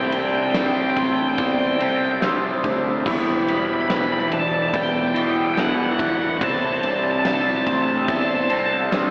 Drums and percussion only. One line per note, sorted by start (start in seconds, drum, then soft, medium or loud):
0.12 ride medium
0.54 snare loud
0.54 ride loud
0.96 kick medium
0.96 ride medium
1.38 kick loud
1.38 ride loud
1.80 ride medium
2.22 snare loud
2.22 ride loud
2.64 kick medium
2.64 ride medium
3.06 kick loud
3.06 crash loud
3.48 ride medium
3.90 snare loud
3.90 ride loud
4.32 kick medium
4.32 ride medium
4.74 kick loud
4.74 ride loud
5.16 ride medium
5.57 snare loud
5.57 ride loud
5.99 kick medium
5.99 ride medium
6.41 kick loud
6.41 ride loud
6.83 ride medium
7.25 snare loud
7.25 ride loud
7.67 kick medium
7.67 ride medium
8.08 kick loud
8.08 ride loud
8.50 ride medium
8.92 snare loud
8.92 ride loud